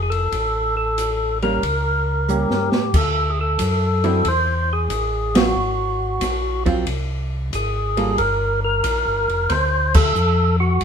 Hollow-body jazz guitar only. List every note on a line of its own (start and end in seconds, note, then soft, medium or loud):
1.43 1.61 G3 medium
1.43 1.61 A#3 medium
1.43 1.62 C#4 medium
2.29 2.69 G3 soft
2.29 2.70 A#3 soft
2.29 2.70 C#4 soft
4.04 4.23 D3 medium
4.04 4.23 F#3 medium
4.04 4.23 C4 medium
4.04 4.23 E4 medium
5.35 5.54 F#3 medium
5.35 5.54 C4 medium
5.35 5.54 F4 medium
6.66 6.85 F#3 medium
6.66 6.85 C4 medium
6.66 6.85 F4 medium
7.97 8.16 G3 soft
7.97 8.16 A#3 medium
7.97 8.17 F4 medium
7.97 8.17 A4 medium